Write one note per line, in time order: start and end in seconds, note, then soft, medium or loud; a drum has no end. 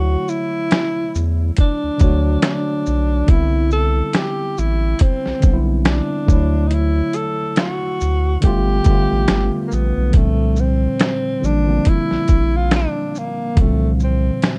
0.00 0.17 D2 loud
0.00 0.80 D3 medium
0.00 0.80 F#3 medium
0.00 0.81 A3 medium
0.00 0.86 E4 medium
0.00 0.31 F#4 medium
0.00 0.82 C#5 medium
0.28 1.33 E4 loud
0.28 shaker soft
0.71 snare loud
0.71 closed hi-hat medium
1.15 1.51 E2 medium
1.15 shaker medium
1.57 2.40 D4 loud
1.57 kick medium
1.57 closed hi-hat medium
1.84 1.90 D2 soft
1.98 2.37 D2 loud
1.98 2.93 D3 medium
1.98 2.94 F#3 medium
1.98 2.95 A3 medium
1.98 kick loud
1.98 closed hi-hat medium
1.98 shaker soft
2.03 2.96 F#4 medium
2.03 2.96 C#5 medium
2.42 3.32 D4 medium
2.42 snare loud
2.42 closed hi-hat medium
2.86 3.23 B1 medium
2.86 shaker soft
3.27 4.02 C2 loud
3.27 4.53 D3 medium
3.27 4.53 G3 medium
3.27 4.54 B3 medium
3.27 3.72 E4 medium
3.27 kick loud
3.27 closed hi-hat medium
3.32 4.55 C4 medium
3.32 4.56 E4 medium
3.71 4.18 A4 loud
3.71 shaker soft
4.13 4.61 G4 medium
4.13 snare loud
4.13 closed hi-hat medium
4.58 4.94 A1 loud
4.58 5.03 E4 medium
4.58 shaker medium
4.99 5.62 C4 loud
4.99 kick medium
4.99 closed hi-hat medium
5.26 5.34 B1 soft
5.26 snare soft
5.40 6.01 B1 medium
5.40 6.25 D3 medium
5.40 6.28 G3 medium
5.40 6.29 B3 medium
5.40 kick loud
5.40 closed hi-hat soft
5.40 shaker medium
5.45 6.30 C4 medium
5.45 5.52 D4 medium
5.53 6.31 E4 medium
5.85 6.69 D4 medium
5.85 snare loud
5.85 closed hi-hat medium
6.26 7.02 D2 medium
6.26 7.66 D3 medium
6.26 7.67 F#3 medium
6.26 7.67 A3 medium
6.26 kick loud
6.26 shaker medium
6.31 7.69 E4 medium
6.31 7.68 C#5 medium
6.67 6.75 D#4 medium
6.67 closed hi-hat medium
6.74 7.17 E4 loud
7.13 7.58 A4 medium
7.13 closed hi-hat soft
7.13 shaker soft
7.56 8.39 F#4 medium
7.56 snare loud
7.56 closed hi-hat medium
8.01 8.37 D2 medium
8.01 shaker medium
8.41 8.80 G1 loud
8.41 8.77 D3 medium
8.41 8.78 G3 medium
8.41 8.79 A3 medium
8.41 9.62 G4 loud
8.41 kick medium
8.41 closed hi-hat medium
8.45 8.80 B3 medium
8.45 8.80 F4 loud
8.84 9.07 G1 loud
8.84 9.79 D3 medium
8.84 9.80 G3 medium
8.84 9.81 A3 medium
8.84 kick loud
8.84 closed hi-hat soft
8.84 shaker medium
8.88 9.81 B3 medium
8.88 9.82 F4 medium
9.12 9.27 A1 medium
9.28 9.50 G1 loud
9.28 snare loud
9.28 closed hi-hat medium
9.67 9.76 A#3 medium
9.67 shaker soft
9.73 9.93 A#1 loud
9.73 10.17 B3 medium
9.97 10.12 B1 loud
10.11 10.88 C2 loud
10.11 11.07 D3 medium
10.11 11.08 F3 medium
10.11 11.09 G3 medium
10.11 kick loud
10.11 closed hi-hat medium
10.16 11.09 A#2 medium
10.16 10.61 A3 medium
10.16 11.10 C4 medium
10.56 11.47 C4 medium
10.56 shaker soft
10.99 snare loud
10.99 closed hi-hat medium
11.40 11.80 A1 loud
11.40 11.59 D3 medium
11.40 11.60 F3 medium
11.40 11.61 G3 medium
11.40 shaker soft
11.45 11.62 A#3 medium
11.45 11.90 D4 medium
11.45 11.63 D4 medium
11.64 12.89 D3 medium
11.64 12.90 F3 medium
11.64 12.91 G3 medium
11.69 12.92 A#3 medium
11.69 12.92 C4 medium
11.85 12.58 E4 loud
11.85 kick medium
11.85 closed hi-hat medium
12.11 12.18 A#1 soft
12.11 snare soft
12.28 12.87 A#1 loud
12.28 kick medium
12.28 closed hi-hat soft
12.28 shaker soft
12.57 12.73 F4 medium
12.71 snare loud
12.71 closed hi-hat medium
12.76 13.20 D4 medium
13.15 13.62 A#3 medium
13.15 shaker soft
13.55 14.31 C2 loud
13.55 14.50 D3 medium
13.55 13.64 E3 medium
13.55 14.52 G3 medium
13.55 kick loud
13.55 closed hi-hat medium
13.60 14.53 A#2 medium
13.60 14.54 F3 medium
13.60 13.91 A3 medium
13.60 14.53 C4 medium
14.00 14.59 C4 medium
14.00 shaker soft
14.42 snare medium
14.42 closed hi-hat medium